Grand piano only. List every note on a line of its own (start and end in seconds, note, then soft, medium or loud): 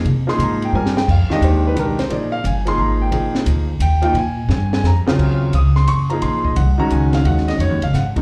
0.27 0.71 F3 medium
0.27 0.71 A#3 medium
0.27 0.72 D#4 medium
0.27 0.72 G#4 medium
0.27 0.40 C6 loud
0.43 0.63 A#5 medium
0.65 0.75 G5 medium
0.74 0.94 G3 medium
0.74 0.94 C4 medium
0.74 0.95 F4 medium
0.74 0.95 A#4 medium
0.74 0.96 G#5 medium
0.97 1.08 G5 medium
1.11 1.31 F5 medium
1.30 1.74 D#3 medium
1.30 1.74 G#3 medium
1.30 1.75 D4 medium
1.30 1.75 G4 medium
1.30 1.43 D#5 loud
1.44 1.65 C5 medium
1.67 1.78 B4 medium
1.75 1.96 D#3 medium
1.75 1.96 G#3 medium
1.75 1.97 D4 medium
1.75 1.97 G4 medium
1.79 2.00 A#4 medium
1.99 2.11 C5 medium
2.09 2.30 F3 medium
2.09 2.30 A#3 soft
2.09 2.31 D#4 medium
2.09 2.31 G#4 medium
2.09 2.33 D5 medium
2.32 2.44 F5 loud
2.46 2.67 G#5 medium
2.65 3.10 F3 medium
2.65 3.11 A#3 medium
2.65 3.11 D#4 medium
2.65 3.11 G#4 medium
2.65 2.79 C6 loud
2.79 3.01 A#5 medium
3.02 3.33 G5 medium
3.11 3.64 F3 medium
3.11 3.65 A#3 medium
3.11 3.65 D#4 medium
3.11 3.65 G#4 medium
3.82 4.03 G5 medium
4.02 4.14 F3 medium
4.02 4.14 A#3 medium
4.02 4.14 D#4 medium
4.02 4.15 F4 medium
4.02 4.16 G5 medium
4.18 4.49 G#5 medium
4.52 4.73 G#5 medium
4.74 4.85 G#5 loud
4.87 5.18 A#5 medium
5.07 5.51 C#3 medium
5.07 5.51 F#3 medium
5.07 5.51 C4 medium
5.07 5.52 F4 medium
5.55 5.76 D#6 medium
5.76 5.88 C6 loud
5.88 6.10 C#6 loud
6.10 6.54 F3 medium
6.10 6.54 A#3 medium
6.10 6.54 D#4 medium
6.10 6.55 G#4 medium
6.10 6.21 A#5 medium
6.22 6.44 C6 medium
6.44 6.56 D#5 medium
6.56 6.78 F#5 medium
6.78 7.22 D#3 medium
6.78 7.22 G#3 medium
6.78 7.23 C#4 medium
6.78 7.23 F#4 medium
6.78 6.91 A#5 loud
6.92 7.13 G#5 medium
7.15 7.25 F5 medium
7.24 7.77 D#3 soft
7.24 7.77 G#3 soft
7.24 7.77 C#4 soft
7.24 7.78 F#4 medium
7.24 7.47 F#5 medium
7.48 7.59 D#5 loud
7.61 7.82 C#5 medium
7.83 7.94 F5 medium
7.95 8.08 F#5 medium
8.16 8.22 D#3 medium
8.16 8.22 G#3 medium
8.16 8.22 C#4 medium
8.16 8.22 D#4 medium